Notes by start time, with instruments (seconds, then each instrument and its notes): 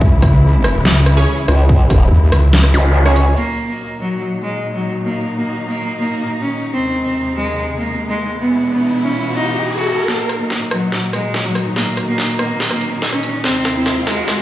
Already playing: string section C#3 E3 G#3 E4
0.01 wobble bass C#2, kick
0.22 kick, cross-stick, closed hi-hat
0.64 cross-stick, closed hi-hat
0.85 wobble bass C#2, snare
1.06 cross-stick, closed hi-hat
1.17 synth stab C#4 G#4 C#5
1.38 closed hi-hat
1.48 wobble bass C#2, cross-stick, closed hi-hat
1.69 kick
1.90 kick, cross-stick, closed hi-hat
2.11 wobble bass D#2
2.32 wobble bass C#2, cross-stick, closed hi-hat
2.53 snare
2.64 cross-stick
2.74 wobble bass C#2, closed hi-hat, zap
3.06 synth stab C#4 G#4 C#5, cross-stick, closed hi-hat
3.16 closed hi-hat
3.37 string section A#2 D#3 F#3 D#4, cello A#3, crash
3.69 cello A#3
4.00 cello F#3
4.42 cello G#3
4.73 cello F#3
5.05 cello A#3
5.36 cello A#3
5.68 cello A#3
5.99 cello A#3
6.41 cello C#4
6.73 string section D#2 C3 G#3, cello C4, riser
7.04 cello C4
7.36 cello G#3
7.78 cello A#3
8.09 cello G#3
8.40 string section B2 E3 E4, cello B3
8.72 cello B3
9.03 cello C#4
9.35 cello D#4
9.77 cello F#4
10.08 string section A#2 D#3 F#3 D#4, cello A#3, snare, riser
10.29 cross-stick, closed hi-hat
10.40 cello A#3
10.50 snare
10.71 cello F#3, cross-stick, closed hi-hat
10.92 snare
11.13 cello G#3, cross-stick, closed hi-hat
11.34 snare
11.45 cello F#3, closed hi-hat
11.55 cross-stick, closed hi-hat
11.76 cello A#3, snare
11.97 cross-stick, closed hi-hat
12.08 cello A#3
12.18 snare
12.39 cello A#3, cross-stick, closed hi-hat
12.60 snare
12.71 cello A#3, cross-stick
12.81 closed hi-hat
13.02 snare
13.13 cello C#4, cross-stick, closed hi-hat
13.23 closed hi-hat
13.44 string section D#2 C3 G#3, cello C4, snare
13.65 snare, closed hi-hat
13.76 cello C4
13.86 snare
14.07 cello G#3, snare, closed hi-hat
14.28 snare